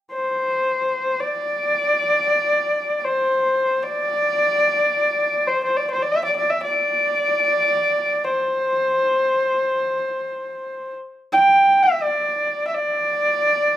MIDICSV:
0, 0, Header, 1, 2, 480
1, 0, Start_track
1, 0, Tempo, 500000
1, 13218, End_track
2, 0, Start_track
2, 0, Title_t, "Horsehead fiddle"
2, 0, Program_c, 0, 110
2, 121, Note_on_c, 0, 72, 66
2, 1152, Note_on_c, 0, 74, 82
2, 1166, Note_off_c, 0, 72, 0
2, 2877, Note_off_c, 0, 74, 0
2, 2877, Note_on_c, 0, 74, 53
2, 2926, Note_on_c, 0, 72, 76
2, 2941, Note_off_c, 0, 74, 0
2, 3685, Note_on_c, 0, 74, 90
2, 3700, Note_off_c, 0, 72, 0
2, 5252, Note_on_c, 0, 72, 75
2, 5267, Note_off_c, 0, 74, 0
2, 5404, Note_off_c, 0, 72, 0
2, 5414, Note_on_c, 0, 72, 68
2, 5540, Note_on_c, 0, 74, 76
2, 5554, Note_off_c, 0, 72, 0
2, 5662, Note_off_c, 0, 74, 0
2, 5674, Note_on_c, 0, 72, 74
2, 5782, Note_on_c, 0, 74, 71
2, 5796, Note_off_c, 0, 72, 0
2, 5874, Note_on_c, 0, 76, 88
2, 5888, Note_off_c, 0, 74, 0
2, 5983, Note_off_c, 0, 76, 0
2, 5999, Note_on_c, 0, 74, 73
2, 6097, Note_off_c, 0, 74, 0
2, 6112, Note_on_c, 0, 74, 76
2, 6239, Note_on_c, 0, 76, 80
2, 6254, Note_off_c, 0, 74, 0
2, 6362, Note_off_c, 0, 76, 0
2, 6368, Note_on_c, 0, 74, 88
2, 7916, Note_on_c, 0, 72, 75
2, 7930, Note_off_c, 0, 74, 0
2, 10509, Note_off_c, 0, 72, 0
2, 10872, Note_on_c, 0, 79, 86
2, 11358, Note_on_c, 0, 76, 77
2, 11372, Note_off_c, 0, 79, 0
2, 11540, Note_on_c, 0, 74, 77
2, 11554, Note_off_c, 0, 76, 0
2, 12161, Note_off_c, 0, 74, 0
2, 12167, Note_on_c, 0, 76, 61
2, 12232, Note_on_c, 0, 74, 87
2, 12246, Note_off_c, 0, 76, 0
2, 13218, Note_off_c, 0, 74, 0
2, 13218, End_track
0, 0, End_of_file